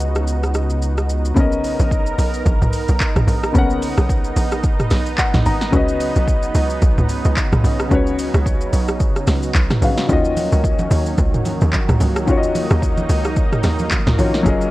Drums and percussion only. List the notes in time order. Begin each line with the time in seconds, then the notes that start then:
0.00 shaker
0.15 cross-stick, shaker
0.27 shaker
0.43 cross-stick, shaker
0.54 cross-stick, shaker
0.70 shaker
0.82 shaker
0.98 cross-stick, shaker
1.10 shaker
1.25 shaker
1.37 kick, shaker
1.52 shaker
1.64 open hi-hat, shaker
1.79 shaker
1.91 kick, shaker
2.06 shaker
2.18 open hi-hat, shaker
2.34 shaker
2.46 kick, shaker
2.62 mid tom, shaker
2.73 open hi-hat, shaker
2.88 shaker
3.00 kick, clap, shaker
3.16 cross-stick, mid tom, shaker
3.28 open hi-hat, shaker
3.44 cross-stick, shaker
3.55 kick, shaker
3.70 shaker
3.82 open hi-hat, shaker
3.97 cross-stick, shaker
4.09 kick, shaker
4.24 shaker
4.36 open hi-hat, shaker
4.52 cross-stick, shaker
4.64 kick, shaker
4.80 cross-stick, mid tom, shaker
4.90 cross-stick, snare, open hi-hat, shaker
5.06 shaker
5.18 kick, clap, shaker
5.34 snare, mid tom, shaker
5.46 open hi-hat, shaker
5.61 snare, shaker
5.73 kick, shaker
5.88 shaker
6.00 open hi-hat, shaker
6.16 shaker
6.28 kick, shaker
6.43 shaker
6.55 open hi-hat, shaker
6.70 shaker
6.82 kick, shaker
6.98 mid tom, shaker
7.09 open hi-hat, shaker
7.25 shaker
7.36 kick, clap, shaker
7.52 cross-stick, mid tom, shaker
7.64 open hi-hat, shaker
7.80 cross-stick, shaker
7.91 kick, shaker
8.07 shaker
8.19 open hi-hat, shaker
8.34 cross-stick, shaker
8.46 kick, shaker
8.61 shaker
8.73 open hi-hat, shaker
8.88 cross-stick, shaker
9.00 kick, shaker
9.16 cross-stick, shaker
9.27 cross-stick, snare, open hi-hat, shaker
9.43 shaker
9.55 kick, clap, shaker
9.71 cross-stick, snare, mid tom, shaker
9.82 open hi-hat, shaker
9.98 snare, shaker
10.09 kick, shaker
10.25 shaker
10.37 open hi-hat, high conga, shaker
10.52 shaker
10.64 kick, shaker
10.79 high conga, shaker
10.91 open hi-hat, low conga, shaker
11.06 shaker
11.18 kick, shaker
11.34 mid tom, shaker
11.45 open hi-hat, high conga, shaker
11.61 high conga, shaker
11.73 kick, clap, high conga, low conga, shaker
11.89 cross-stick, mid tom, shaker
12.00 open hi-hat, high conga, shaker
12.16 cross-stick, shaker
12.28 kick, shaker
12.43 shaker
12.55 open hi-hat, high conga, shaker
12.70 cross-stick, shaker
12.82 kick, shaker
12.97 high conga, shaker
13.09 open hi-hat, shaker
13.24 cross-stick, shaker
13.36 kick, shaker
13.52 cross-stick, mid tom, shaker
13.63 cross-stick, snare, open hi-hat, high conga, shaker
13.79 high conga, shaker
13.91 kick, clap, high conga, low conga, shaker
14.07 snare, mid tom, shaker
14.18 open hi-hat, high conga, shaker
14.34 snare, shaker
14.46 kick, shaker
14.61 shaker